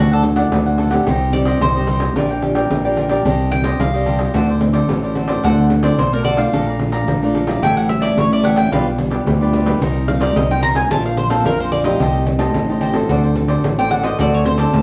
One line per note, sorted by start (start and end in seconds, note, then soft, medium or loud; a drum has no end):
0.00 0.43 D2 medium
0.00 0.49 D3 medium
0.00 0.20 A3 medium
0.00 0.20 D4 medium
0.00 0.11 F#4 medium
0.00 0.20 F#4 medium
0.00 0.10 D5 medium
0.00 0.10 F#5 medium
0.11 0.21 A4 medium
0.11 0.23 A4 soft
0.11 0.23 D5 soft
0.11 0.23 F#5 medium
0.11 pandeiro soft
0.23 0.60 A3 medium
0.23 0.61 D4 medium
0.23 0.61 F#4 medium
0.23 muted cavaquinho stroke soft
0.23 pandeiro medium
0.36 0.64 A4 medium
0.36 0.64 D5 medium
0.36 0.63 F#5 medium
0.36 pandeiro medium
0.51 0.98 D2 medium
0.51 1.03 A2 medium
0.51 pandeiro medium
0.66 0.88 A3 medium
0.66 0.89 D4 medium
0.66 0.89 F#4 medium
0.66 0.77 A4 soft
0.66 0.78 D5 soft
0.66 0.78 F#5 medium
0.66 pandeiro soft
0.78 0.91 D4 soft
0.78 0.91 A4 medium
0.78 0.90 D5 medium
0.78 0.89 F#5 medium
0.78 pandeiro medium
0.90 1.29 C4 medium
0.90 1.29 D#4 medium
0.90 1.29 G4 medium
0.90 1.05 A4 medium
0.90 1.05 D5 medium
0.90 1.04 F#5 medium
0.90 pandeiro medium
1.06 1.53 C2 medium
1.06 1.58 C3 medium
1.06 1.32 D#4 medium
1.06 1.32 G4 medium
1.06 1.33 C5 medium
1.06 1.33 D#5 medium
1.06 pandeiro medium
1.21 pandeiro soft
1.33 1.70 C4 medium
1.33 1.70 D#4 medium
1.33 1.70 G4 medium
1.33 1.60 D5 medium
1.33 muted cavaquinho stroke soft
1.33 pandeiro medium
1.45 1.74 G4 medium
1.45 1.73 C5 medium
1.45 1.73 D#5 medium
1.45 pandeiro medium
1.61 2.07 C2 loud
1.61 2.13 G2 medium
1.61 2.12 C5 medium
1.61 pandeiro medium
1.75 2.12 C4 medium
1.75 2.12 D#4 medium
1.75 2.12 G4 medium
1.75 1.87 G4 soft
1.75 1.88 C5 soft
1.75 1.88 D#5 medium
1.75 pandeiro soft
1.87 2.00 D#4 medium
1.87 2.01 G4 medium
1.87 2.01 C5 medium
1.87 1.99 D#5 medium
1.87 pandeiro medium
2.00 2.15 G4 soft
2.00 2.15 C5 soft
2.00 2.14 D#5 soft
2.00 pandeiro medium
2.16 2.62 A#1 medium
2.16 2.68 A#3 medium
2.16 2.28 F4 medium
2.16 2.32 F4 medium
2.16 2.32 G4 medium
2.16 2.29 A#4 medium
2.16 2.32 D5 medium
2.16 2.29 D5 medium
2.16 2.29 G5 medium
2.16 pandeiro medium
2.30 2.42 A#4 soft
2.30 2.42 D5 soft
2.30 2.42 G5 soft
2.30 pandeiro soft
2.42 2.69 F4 medium
2.42 2.69 G4 medium
2.42 2.69 D5 medium
2.42 muted cavaquinho stroke soft
2.42 pandeiro medium
2.55 2.83 A#4 medium
2.55 2.83 D5 medium
2.55 2.82 G5 medium
2.55 pandeiro medium
2.70 3.17 A#1 medium
2.70 3.22 A#3 medium
2.70 pandeiro medium
2.84 3.07 F4 medium
2.84 3.07 G4 medium
2.84 2.96 A#4 soft
2.84 3.08 D5 medium
2.84 2.97 D5 soft
2.84 2.97 G5 medium
2.84 pandeiro soft
2.96 3.10 F4 soft
2.96 3.10 A#4 medium
2.96 3.09 D5 medium
2.96 3.08 G5 medium
2.96 pandeiro medium
3.09 3.47 D#4 medium
3.09 3.47 G4 medium
3.09 3.24 A#4 medium
3.09 3.47 D5 medium
3.09 3.23 D5 medium
3.09 3.23 G5 medium
3.09 pandeiro medium
3.24 3.71 C2 loud
3.24 3.77 C4 medium
3.24 3.50 D4 medium
3.24 3.50 G4 medium
3.24 3.51 C5 medium
3.24 3.51 D#5 medium
3.24 pandeiro medium
3.40 pandeiro soft
3.51 3.77 D#4 medium
3.51 3.77 G4 medium
3.51 3.78 D5 medium
3.51 3.79 G5 loud
3.51 muted cavaquinho stroke soft
3.51 pandeiro medium
3.64 3.92 G4 medium
3.64 3.92 C5 medium
3.64 3.91 D#5 medium
3.64 pandeiro medium
3.79 4.26 C2 medium
3.79 4.31 G3 medium
3.79 4.31 F5 medium
3.79 pandeiro medium
3.93 4.30 D#4 medium
3.93 4.30 G4 medium
3.93 4.05 G4 soft
3.93 4.06 C5 soft
3.93 4.31 D5 medium
3.93 4.06 D#5 medium
3.93 pandeiro soft
4.06 4.19 D4 medium
4.06 4.19 G4 medium
4.06 4.18 C5 medium
4.06 4.17 D#5 medium
4.06 pandeiro medium
4.19 4.33 G4 soft
4.19 4.33 C5 soft
4.19 4.32 D#5 soft
4.19 pandeiro medium
4.34 4.81 D2 medium
4.34 4.86 D3 medium
4.34 4.57 A3 medium
4.34 4.57 C4 medium
4.34 4.47 F#4 medium
4.34 4.58 F#4 medium
4.34 4.47 A4 medium
4.34 4.48 C5 medium
4.34 4.48 D5 medium
4.34 pandeiro medium
4.49 4.60 A4 soft
4.49 4.60 C5 medium
4.49 4.61 D5 soft
4.49 pandeiro soft
4.61 4.84 A3 medium
4.61 4.85 C4 medium
4.61 4.85 F#4 medium
4.61 muted cavaquinho stroke soft
4.61 pandeiro medium
4.73 5.02 A4 medium
4.73 5.01 C5 medium
4.73 5.01 D5 medium
4.73 pandeiro medium
4.88 5.35 A1 medium
4.88 5.41 A2 medium
4.88 5.26 A3 medium
4.88 5.26 C4 medium
4.88 5.26 F#4 medium
4.88 pandeiro medium
5.03 5.15 A4 soft
5.03 5.15 C5 soft
5.03 5.16 D5 medium
5.03 pandeiro soft
5.15 5.28 F#4 soft
5.15 5.29 A4 medium
5.15 5.28 C5 medium
5.15 5.26 D5 medium
5.15 pandeiro medium
5.28 5.39 A3 medium
5.28 5.39 C4 medium
5.28 5.39 F#4 medium
5.28 5.43 A4 medium
5.28 5.42 C5 medium
5.28 5.41 D5 medium
5.28 pandeiro medium
5.43 5.90 D2 loud
5.43 5.96 D3 medium
5.43 5.81 A3 medium
5.43 5.81 C4 medium
5.43 5.69 F#4 medium
5.43 5.81 F#4 medium
5.43 5.70 A4 medium
5.43 5.70 C5 medium
5.43 5.70 D5 medium
5.43 5.82 F#5 medium
5.43 pandeiro medium
5.58 pandeiro soft
5.70 muted cavaquinho stroke soft
5.70 pandeiro medium
5.83 6.07 A3 medium
5.83 6.07 C4 medium
5.83 6.07 F#4 medium
5.83 6.11 A4 medium
5.83 6.11 C5 medium
5.83 6.10 D5 medium
5.83 5.97 D5 medium
5.83 pandeiro medium
5.98 6.45 B1 medium
5.98 6.51 A2 medium
5.98 6.12 C5 medium
5.98 pandeiro medium
6.13 6.36 A3 medium
6.13 6.36 C4 medium
6.13 6.36 F#4 medium
6.13 6.24 A4 soft
6.13 6.24 A#4 medium
6.13 6.25 C5 soft
6.13 6.25 D5 soft
6.13 pandeiro soft
6.24 6.38 F#4 medium
6.24 6.38 A4 medium
6.24 6.37 C5 medium
6.24 6.38 D5 medium
6.24 6.36 D5 medium
6.24 pandeiro medium
6.37 6.75 A3 medium
6.37 6.76 D4 medium
6.37 6.76 F4 medium
6.37 6.52 A4 soft
6.37 6.51 C5 soft
6.37 6.51 D5 soft
6.37 6.90 F5 medium
6.37 pandeiro medium
6.53 7.00 A#1 medium
6.53 7.05 A#2 medium
6.53 6.66 A4 medium
6.53 6.66 D5 medium
6.53 6.66 F5 medium
6.53 6.66 A#5 medium
6.53 pandeiro medium
6.68 6.79 D5 soft
6.68 6.79 F5 soft
6.68 6.80 A#5 medium
6.68 pandeiro soft
6.79 7.17 A3 medium
6.79 7.17 D4 medium
6.79 7.17 F4 medium
6.79 muted cavaquinho stroke soft
6.79 pandeiro medium
6.92 7.21 D5 medium
6.92 7.20 F5 medium
6.92 7.20 A#5 medium
6.92 pandeiro medium
7.08 7.54 A#1 medium
7.08 7.60 F3 medium
7.08 pandeiro medium
7.22 7.45 A3 medium
7.22 7.45 D4 medium
7.22 7.45 F4 medium
7.22 7.34 D5 soft
7.22 7.34 F5 medium
7.22 7.35 A#5 medium
7.22 pandeiro soft
7.34 7.47 A4 soft
7.34 7.48 D5 soft
7.34 7.47 F5 medium
7.34 7.46 A#5 medium
7.34 pandeiro medium
7.47 7.85 G3 medium
7.47 7.85 C#4 medium
7.47 7.85 E4 medium
7.47 7.62 D5 medium
7.47 7.61 F5 medium
7.47 7.61 A#5 medium
7.47 pandeiro medium
7.62 8.09 A1 loud
7.62 8.15 A2 medium
7.62 7.88 G4 medium
7.62 7.89 A4 medium
7.62 7.89 C#5 medium
7.62 7.89 E5 medium
7.62 7.76 G5 medium
7.62 pandeiro medium
7.77 7.89 F#5 medium
7.77 pandeiro soft
7.89 8.26 G3 medium
7.89 8.26 C#4 medium
7.89 8.27 E4 medium
7.89 8.03 E5 medium
7.89 muted cavaquinho stroke soft
7.89 pandeiro medium
8.02 8.30 A4 medium
8.02 8.29 C#5 medium
8.02 8.16 D5 medium
8.02 8.29 E5 medium
8.02 pandeiro medium
8.17 8.64 A1 loud
8.17 8.69 E3 medium
8.17 8.31 C#5 medium
8.17 pandeiro medium
8.32 8.68 G3 medium
8.32 8.68 C#4 medium
8.32 8.69 E4 medium
8.32 8.43 A4 soft
8.32 8.43 C#5 soft
8.32 8.45 D5 medium
8.32 8.44 E5 medium
8.32 pandeiro soft
8.44 8.57 G4 medium
8.44 8.57 A4 medium
8.44 8.56 C#5 medium
8.44 8.55 E5 medium
8.44 8.57 F#5 loud
8.44 pandeiro medium
8.56 8.71 A4 soft
8.56 8.70 C#5 soft
8.56 8.70 E5 soft
8.56 8.71 G5 medium
8.56 pandeiro medium
8.72 9.18 B1 medium
8.72 9.24 B2 medium
8.72 8.88 G3 medium
8.72 8.89 D4 medium
8.72 8.84 F4 medium
8.72 8.89 F4 medium
8.72 8.85 G4 medium
8.72 8.85 B4 medium
8.72 8.85 D5 medium
8.72 8.89 F5 medium
8.72 pandeiro medium
8.86 8.98 G4 soft
8.86 8.98 B4 soft
8.86 8.99 D5 soft
8.86 pandeiro soft
8.98 9.36 G3 medium
8.98 9.36 D4 medium
8.98 9.36 F4 medium
8.98 muted cavaquinho stroke soft
8.98 pandeiro medium
9.11 9.39 G4 medium
9.11 9.39 B4 medium
9.11 9.38 D5 medium
9.11 pandeiro medium
9.27 9.73 D2 medium
9.27 9.79 B2 medium
9.27 pandeiro medium
9.41 9.64 G3 medium
9.41 9.64 D4 medium
9.41 9.64 F4 medium
9.41 9.53 G4 soft
9.41 9.53 B4 soft
9.41 9.53 D5 medium
9.41 pandeiro soft
9.53 9.66 F4 medium
9.53 9.66 G4 medium
9.53 9.66 B4 medium
9.53 9.65 D5 medium
9.53 pandeiro medium
9.65 10.03 G3 medium
9.65 10.03 A#3 medium
9.65 10.04 D#4 medium
9.65 9.80 G4 medium
9.65 9.80 B4 medium
9.65 9.79 D5 medium
9.65 pandeiro medium
9.81 10.28 C2 loud
9.81 10.33 C3 medium
9.81 10.06 D#4 medium
9.81 10.07 A#4 medium
9.81 10.07 C5 medium
9.81 10.07 D#5 medium
9.81 pandeiro medium
9.96 pandeiro soft
10.08 10.45 G3 medium
10.08 10.45 A#3 medium
10.08 10.45 D#4 medium
10.08 10.22 F5 medium
10.08 muted cavaquinho stroke soft
10.08 pandeiro medium
10.20 10.48 A#4 medium
10.20 10.48 C5 medium
10.20 10.35 D5 medium
10.20 10.47 D#5 medium
10.20 pandeiro medium
10.36 10.83 C2 medium
10.36 10.88 G2 medium
10.36 10.50 D#5 medium
10.36 pandeiro medium
10.50 10.87 G3 medium
10.50 10.87 A#3 medium
10.50 10.87 D#4 medium
10.50 10.62 A#4 soft
10.50 10.63 C5 soft
10.50 10.63 D#5 medium
10.50 10.62 G5 medium
10.50 pandeiro soft
10.63 10.76 D#4 medium
10.63 10.76 A#4 medium
10.63 10.75 C5 medium
10.63 10.74 D#5 medium
10.63 10.76 A#5 loud
10.63 pandeiro medium
10.75 10.90 A#4 soft
10.75 10.89 C5 soft
10.75 10.89 D#5 soft
10.75 10.90 G#5 medium
10.75 pandeiro medium
10.90 11.37 A#1 medium
10.90 11.43 A#2 medium
10.90 11.17 F3 medium
10.90 11.17 A#3 medium
10.90 11.17 C4 medium
10.90 11.03 F4 medium
10.90 11.04 A#4 medium
10.90 11.04 C5 medium
10.90 11.04 F5 medium
10.90 11.04 A5 loud
10.90 pandeiro medium
11.05 11.17 A#4 soft
11.05 11.17 C5 soft
11.05 11.17 F5 soft
11.05 11.18 F5 medium
11.05 pandeiro soft
11.17 11.30 C5 medium
11.17 muted cavaquinho stroke soft
11.17 pandeiro medium
11.30 11.54 F3 medium
11.30 11.54 A#3 medium
11.30 11.54 C4 medium
11.30 11.44 A4 medium
11.30 11.58 A#4 medium
11.30 11.58 C5 medium
11.30 11.57 F5 medium
11.30 pandeiro medium
11.45 11.92 A#1 medium
11.45 11.97 F2 medium
11.45 11.59 A#4 medium
11.45 pandeiro medium
11.60 11.82 F3 medium
11.60 11.83 A#3 medium
11.60 11.83 C4 medium
11.60 11.71 A#4 soft
11.60 11.71 C5 medium
11.60 11.72 C5 soft
11.60 11.72 F5 medium
11.60 pandeiro soft
11.72 11.85 F4 medium
11.72 11.85 A#4 medium
11.72 11.84 C5 medium
11.72 11.84 D5 medium
11.72 11.83 F5 medium
11.72 pandeiro medium
11.84 12.36 A3 medium
11.84 12.36 D#4 medium
11.84 12.36 G4 medium
11.84 11.99 A#4 medium
11.84 11.99 C5 medium
11.84 13.18 D#5 medium
11.84 11.98 F5 medium
11.84 pandeiro medium
12.00 12.47 C2 loud
12.00 12.52 C3 medium
12.00 12.25 G4 medium
12.00 12.26 C5 medium
12.00 12.26 D#5 medium
12.00 12.26 A5 medium
12.00 pandeiro medium
12.14 pandeiro soft
12.26 muted cavaquinho stroke soft
12.26 pandeiro medium
12.39 12.63 A3 medium
12.39 12.63 D#4 medium
12.39 12.63 G4 medium
12.39 12.67 C5 medium
12.39 12.67 D#5 medium
12.39 12.66 A5 medium
12.39 pandeiro medium
12.54 13.01 A1 loud
12.54 13.06 C3 medium
12.54 pandeiro medium
12.68 12.91 A3 medium
12.68 12.91 D#4 medium
12.68 12.92 G4 medium
12.68 12.81 C5 soft
12.68 12.81 D#5 medium
12.68 12.81 A5 soft
12.68 pandeiro soft
12.81 12.94 G4 medium
12.81 12.95 C5 medium
12.81 12.94 D#5 medium
12.81 12.93 A5 medium
12.81 pandeiro medium
12.93 13.34 C4 medium
12.93 13.34 F#4 medium
12.93 13.35 A4 medium
12.93 13.09 C5 soft
12.93 13.08 D#5 soft
12.93 13.08 A5 medium
12.93 pandeiro medium
13.09 13.56 D2 medium
13.09 13.61 D3 medium
13.09 13.22 F#4 medium
13.09 13.22 A4 medium
13.09 13.23 C5 medium
13.09 13.22 D5 medium
13.09 pandeiro medium
13.23 13.35 A4 soft
13.23 13.35 C5 soft
13.23 13.35 D5 medium
13.23 pandeiro soft
13.35 13.73 C4 medium
13.35 13.73 F#4 medium
13.35 13.73 A4 medium
13.35 muted cavaquinho stroke soft
13.35 pandeiro medium
13.48 13.77 A4 medium
13.48 13.76 C5 medium
13.48 13.76 D5 medium
13.48 pandeiro medium
13.63 14.11 A1 medium
13.63 14.16 A2 medium
13.63 pandeiro medium
13.78 14.01 C4 medium
13.78 14.01 F#4 medium
13.78 14.01 A4 medium
13.78 13.90 A4 soft
13.78 13.91 C5 medium
13.78 13.91 D5 medium
13.78 13.91 G5 medium
13.78 pandeiro soft
13.90 14.04 F#4 medium
13.90 14.04 A4 medium
13.90 14.03 C5 medium
13.90 14.02 D5 medium
13.90 14.05 F#5 loud
13.90 pandeiro medium
14.03 14.13 C4 medium
14.03 14.13 F#4 medium
14.03 14.14 A4 medium
14.03 14.18 A4 medium
14.03 14.17 C5 medium
14.03 14.17 D5 medium
14.03 14.18 D#5 medium
14.03 pandeiro medium
14.18 14.65 D2 loud
14.18 14.71 D3 medium
14.18 14.42 C4 medium
14.18 14.44 F#4 medium
14.18 14.42 F#4 medium
14.18 14.44 A4 medium
14.18 14.42 A4 medium
14.18 14.45 C5 medium
14.18 14.33 D5 medium
14.18 14.45 D5 medium
14.18 pandeiro medium
14.33 14.45 C#5 medium
14.33 pandeiro soft
14.45 14.72 C4 medium
14.45 14.72 F#4 medium
14.45 14.72 A4 medium
14.45 14.59 C5 medium
14.45 muted cavaquinho stroke soft
14.45 pandeiro medium
14.58 14.82 A4 medium
14.58 14.82 C5 medium
14.58 14.82 D5 medium
14.58 pandeiro medium
14.73 14.82 D2 loud
14.73 14.82 A2 medium
14.73 pandeiro medium